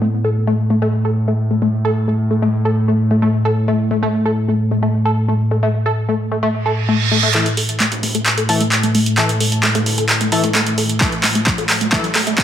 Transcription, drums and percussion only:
7.34 clap soft
7.34 closed hi-hat medium
7.46 closed hi-hat medium
7.57 open hi-hat loud
7.69 closed hi-hat medium
7.80 clap medium
7.80 closed hi-hat medium
7.92 closed hi-hat medium
7.92 mid tom medium
8.03 mid tom medium
8.03 open hi-hat medium
8.15 closed hi-hat medium
8.26 clap medium
8.26 closed hi-hat medium
8.38 closed hi-hat medium
8.49 mid tom medium
8.49 open hi-hat loud
8.61 closed hi-hat medium
8.72 clap medium
8.72 closed hi-hat medium
8.83 closed hi-hat medium
8.95 open hi-hat medium
9.06 closed hi-hat medium
9.18 clap medium
9.18 closed hi-hat medium
9.29 closed hi-hat medium
9.40 open hi-hat loud
9.52 closed hi-hat medium
9.63 clap medium
9.63 closed hi-hat medium
9.75 closed hi-hat medium
9.75 mid tom medium
9.86 mid tom medium
9.86 open hi-hat medium
9.98 closed hi-hat medium
10.09 clap medium
10.09 closed hi-hat medium
10.21 closed hi-hat medium
10.32 mid tom medium
10.32 open hi-hat loud
10.44 closed hi-hat medium
10.55 clap medium
10.55 closed hi-hat medium
10.67 closed hi-hat medium
10.78 open hi-hat loud
10.89 closed hi-hat medium
11.01 kick loud
11.01 clap medium
11.01 closed hi-hat medium
11.12 closed hi-hat medium
11.24 clap medium
11.24 open hi-hat loud
11.35 closed hi-hat medium
11.47 kick loud
11.47 clap medium
11.47 closed hi-hat medium
11.58 closed hi-hat medium
11.58 mid tom medium
11.69 clap medium
11.69 mid tom medium
11.69 open hi-hat loud
11.81 closed hi-hat medium
11.92 kick loud
11.92 clap medium
11.92 closed hi-hat medium
12.04 closed hi-hat medium
12.15 clap medium
12.15 mid tom medium
12.15 open hi-hat loud
12.27 closed hi-hat medium
12.38 kick loud
12.38 clap medium
12.38 closed hi-hat medium

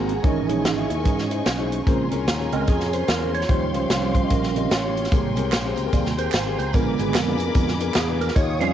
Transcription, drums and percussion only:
0.09 closed hi-hat medium
0.24 kick loud
0.24 closed hi-hat medium
0.49 closed hi-hat medium
0.65 snare loud
0.65 closed hi-hat medium
0.90 closed hi-hat medium
1.05 kick medium
1.05 closed hi-hat medium
1.18 snare soft
1.31 closed hi-hat medium
1.46 snare medium
1.46 closed hi-hat medium
1.72 closed hi-hat medium
1.87 kick loud
1.87 closed hi-hat medium
2.12 closed hi-hat medium
2.28 snare loud
2.28 closed hi-hat medium
2.52 closed hi-hat medium
2.67 kick medium
2.67 closed hi-hat medium
2.80 snare soft
2.93 closed hi-hat medium
3.08 snare medium
3.08 closed hi-hat medium
3.34 closed hi-hat medium
3.41 snare soft
3.49 kick loud
3.49 closed hi-hat medium
3.74 closed hi-hat medium
3.90 snare loud
3.90 closed hi-hat medium
4.15 kick medium
4.15 closed hi-hat medium
4.30 kick medium
4.30 closed hi-hat medium
4.43 snare soft
4.56 closed hi-hat medium
4.71 snare medium
4.71 closed hi-hat medium
4.97 closed hi-hat medium
5.04 snare soft
5.12 kick loud
5.12 closed hi-hat medium
5.12 tambourine medium
5.36 closed hi-hat medium
5.36 tambourine soft
5.52 snare loud
5.52 clap medium
5.52 closed hi-hat medium
5.52 tambourine medium
5.76 closed hi-hat medium
5.76 tambourine medium
5.92 kick medium
5.92 closed hi-hat medium
5.92 tambourine medium
6.06 snare soft
6.18 closed hi-hat medium
6.18 tambourine medium
6.32 snare medium
6.32 clap medium
6.32 closed hi-hat medium
6.32 tambourine medium
6.58 closed hi-hat medium
6.58 tambourine medium
6.73 kick loud
6.73 closed hi-hat medium
6.73 tambourine medium
6.98 closed hi-hat medium
6.98 tambourine soft
7.14 snare loud
7.14 clap medium
7.14 closed hi-hat medium
7.14 tambourine medium
7.38 closed hi-hat medium
7.38 tambourine medium
7.55 kick medium
7.55 closed hi-hat medium
7.55 tambourine medium
7.68 snare soft
7.80 closed hi-hat medium
7.80 tambourine medium
7.94 snare loud
7.94 clap medium
7.94 closed hi-hat medium
7.94 tambourine medium
8.21 closed hi-hat medium
8.21 tambourine medium
8.28 snare soft
8.36 kick loud
8.36 closed hi-hat medium
8.36 tambourine medium
8.61 closed hi-hat medium
8.61 tambourine soft

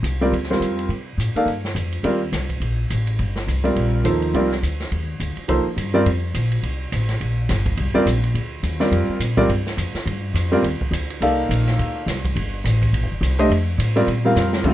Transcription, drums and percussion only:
0.04 hi-hat pedal medium
0.04 ride medium
0.22 ride soft
0.33 ride soft
0.43 snare soft
0.52 snare soft
0.62 hi-hat pedal soft
0.62 ride medium
0.79 ride soft
0.90 ride soft
1.20 hi-hat pedal medium
1.20 ride medium
1.36 ride soft
1.48 ride soft
1.65 snare soft
1.76 hi-hat pedal medium
1.76 ride medium
1.92 ride soft
2.04 ride medium
2.32 snare soft
2.32 hi-hat pedal medium
2.32 ride medium
2.49 kick soft
2.49 ride soft
2.62 ride medium
2.90 hi-hat pedal medium
2.90 ride medium
3.07 ride soft
3.19 ride soft
3.36 snare soft
3.48 hi-hat pedal medium
3.48 ride medium
3.65 ride soft
3.76 ride medium
4.05 hi-hat pedal soft
4.05 ride medium
4.22 ride soft
4.34 ride soft
4.51 snare soft
4.63 hi-hat pedal soft
4.63 ride medium
4.80 snare soft
4.80 ride soft
4.92 ride medium
5.20 hi-hat pedal medium
5.20 ride medium
5.37 ride soft
5.49 ride medium
5.78 hi-hat pedal medium
5.78 ride medium
6.06 ride medium
6.35 hi-hat pedal medium
6.35 ride medium
6.52 ride soft
6.63 ride medium
6.92 hi-hat pedal medium
6.92 ride medium
7.09 snare soft
7.09 ride soft
7.21 ride medium
7.49 snare soft
7.49 hi-hat pedal medium
7.49 ride medium
7.66 kick medium
7.66 ride soft
7.77 ride medium
8.07 hi-hat pedal medium
8.07 ride medium
8.24 ride soft
8.35 ride medium
8.63 hi-hat pedal medium
8.63 ride medium
8.81 snare soft
8.81 ride soft
8.92 ride medium
9.20 hi-hat pedal medium
9.20 ride medium
9.37 kick medium
9.37 ride soft
9.49 ride medium
9.66 snare soft
9.78 hi-hat pedal medium
9.78 ride medium
9.95 snare soft
9.95 ride soft
10.07 ride medium
10.35 hi-hat pedal medium
10.35 ride medium
10.53 ride soft
10.64 ride medium
10.81 kick medium
10.93 hi-hat pedal medium
10.93 ride medium
11.10 ride soft
11.22 ride medium
11.51 hi-hat pedal medium
11.51 ride medium
11.67 snare soft
11.67 ride soft
11.79 ride medium
12.08 snare soft
12.08 hi-hat pedal medium
12.08 ride medium
12.25 kick medium
12.25 ride soft
12.36 ride medium
12.65 hi-hat pedal medium
12.65 ride medium
12.82 kick soft
12.82 ride soft
12.94 ride medium
13.23 hi-hat pedal medium
13.23 ride medium
13.39 ride soft
13.51 ride medium
13.80 hi-hat pedal medium
13.80 ride medium
13.96 ride soft
14.08 ride medium
14.36 snare soft
14.36 hi-hat pedal medium
14.53 snare medium
14.64 kick medium
14.64 crash medium

